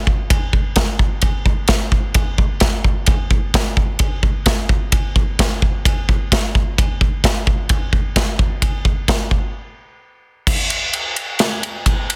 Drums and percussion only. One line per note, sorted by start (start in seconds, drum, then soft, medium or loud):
0.07 kick medium
0.30 kick loud
0.30 ride bell medium
0.53 kick medium
0.76 kick loud
0.76 snare loud
0.76 ride bell medium
0.99 kick medium
1.22 kick loud
1.22 ride bell medium
1.46 kick medium
1.68 kick loud
1.68 snare loud
1.68 ride bell medium
1.92 kick medium
2.14 kick loud
2.14 ride bell medium
2.38 kick medium
2.60 kick loud
2.60 snare loud
2.60 ride bell medium
2.84 kick medium
3.06 kick loud
3.06 ride bell medium
3.31 kick medium
3.54 kick loud
3.54 snare loud
3.54 ride bell medium
3.77 kick medium
3.99 kick loud
3.99 ride bell medium
4.23 kick medium
4.46 kick loud
4.46 snare loud
4.46 ride bell medium
4.69 kick medium
4.92 kick loud
4.92 ride bell medium
5.16 kick medium
5.39 kick loud
5.39 snare loud
5.39 ride bell medium
5.62 kick medium
5.85 kick loud
5.85 ride bell medium
6.09 kick medium
6.32 kick loud
6.32 snare loud
6.32 ride bell medium
6.55 kick medium
6.78 kick loud
6.78 ride bell medium
7.01 kick medium
7.24 kick loud
7.24 snare loud
7.24 ride bell medium
7.47 kick medium
7.69 kick loud
7.69 ride bell medium
7.93 kick medium
8.16 kick loud
8.16 snare loud
8.16 ride bell medium
8.39 kick loud
8.62 kick loud
8.62 ride bell medium
8.85 kick medium
9.08 kick loud
9.08 snare loud
9.08 ride bell medium
9.31 kick medium
10.47 kick loud
10.47 crash loud
10.70 ride medium
10.93 ride medium
11.16 ride medium
11.39 snare loud
11.39 ride loud
11.63 ride medium
11.86 kick medium
11.86 ride loud
12.10 ride medium